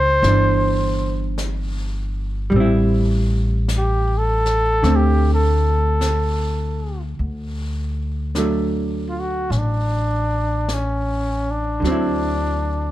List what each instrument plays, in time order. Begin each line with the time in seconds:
Already playing: upright bass C#2, hollow-body jazz guitar E3 D4, trumpet C5
0.22 upright bass G1, hollow-body jazz guitar E3, brush sweep, snare
0.27 hollow-body jazz guitar D4
1.38 brush sweep, snare, hi-hat pedal
2.50 upright bass A1, hollow-body jazz guitar G3, brush sweep
2.56 hollow-body jazz guitar C4
2.60 hollow-body jazz guitar E4
3.68 brush sweep, snare, hi-hat pedal
3.77 trumpet G4
4.18 trumpet A4
4.46 snare
4.82 upright bass D2, hollow-body jazz guitar D3 A3 C4, brush sweep, snare
4.96 trumpet G4
5.34 trumpet A4
6.01 brush sweep, snare, hi-hat pedal
7.18 upright bass D2, brush sweep
8.35 hollow-body jazz guitar D3 F#3 A3, brush sweep, snare, hi-hat pedal
9.09 trumpet F4
9.19 trumpet F#4
9.50 upright bass A1, trumpet C#4, brush sweep, snare
9.58 trumpet D4
10.69 brush sweep, snare, hi-hat pedal
10.73 trumpet C#4
11.51 trumpet D4
11.80 upright bass D2, hollow-body jazz guitar D3
11.84 hollow-body jazz guitar F#3 C4, brush sweep, snare
11.91 hollow-body jazz guitar E4